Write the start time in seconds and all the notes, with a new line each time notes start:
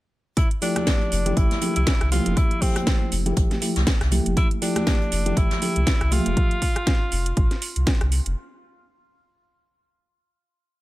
0.37 E4, kick, closed hi-hat
0.51 closed hi-hat
0.62 F3 A3 D4 E4 G4, closed hi-hat, open hi-hat
0.76 cross-stick, snare, closed hi-hat, high conga
0.87 kick, snare, closed hi-hat
1.01 closed hi-hat
1.12 F1, closed hi-hat, open hi-hat
1.26 F3 A3 E4 G4, closed hi-hat, high bongo
1.36 A1 E4, kick, closed hi-hat
1.51 snare, closed hi-hat, high conga
1.61 F3 A3 E4 G4, closed hi-hat, open hi-hat, high bongo
1.76 C2 E4, closed hi-hat
1.87 kick, snare, closed hi-hat
2.01 C2, cross-stick, closed hi-hat
2.12 F3 A3 E4 F4 G4, closed hi-hat, open hi-hat, high conga, low conga
2.26 F1, closed hi-hat, high bongo, low conga
2.37 E4, kick, closed hi-hat
2.51 closed hi-hat
2.62 F3 A3 C4 E4 G4, kick, open hi-hat
2.76 cross-stick, closed hi-hat, high conga
2.87 kick, snare, closed hi-hat
3.12 F1, closed hi-hat, open hi-hat
3.26 F3 A3 E4 G4, closed hi-hat, high bongo
3.36 A1 E4 G4, kick, closed hi-hat
3.51 snare, closed hi-hat, high conga
3.62 F3 A3 E4 G4, closed hi-hat, open hi-hat
3.76 C2, snare, closed hi-hat
3.87 kick, snare, closed hi-hat
4.01 C2, cross-stick, snare, closed hi-hat
4.11 F3 A3 E4 G4, closed hi-hat, open hi-hat, high conga, low conga
4.26 F1, closed hi-hat
4.37 E4, kick, closed hi-hat
4.51 closed hi-hat
4.62 F3 A3 D4 E4 G4, closed hi-hat, open hi-hat
4.76 cross-stick, snare, closed hi-hat, high conga
4.87 kick, snare, closed hi-hat
5.01 closed hi-hat
5.12 F1, closed hi-hat, open hi-hat
5.26 F3 A3 E4 G4, closed hi-hat, high bongo
5.37 A1 E4, kick, closed hi-hat
5.51 snare, closed hi-hat, high conga
5.62 F3 A3 E4 G4, closed hi-hat, open hi-hat, high bongo
5.76 C2, closed hi-hat
5.87 kick, snare, closed hi-hat
6.01 C2, cross-stick, closed hi-hat
6.11 F3 A3 F4 G4 E5, closed hi-hat, open hi-hat, high conga, low conga
6.26 F1, closed hi-hat, high bongo, low conga
6.37 kick, closed hi-hat
6.51 closed hi-hat
6.62 kick, open hi-hat
6.76 cross-stick, closed hi-hat
6.87 kick, snare, closed hi-hat
7.12 F1, open hi-hat
7.26 closed hi-hat
7.37 A1, kick, closed hi-hat
7.51 snare, closed hi-hat
7.62 open hi-hat
7.76 C2, closed hi-hat
7.87 kick, snare, closed hi-hat
8.01 C2, cross-stick, closed hi-hat
8.12 open hi-hat
8.26 F1, closed hi-hat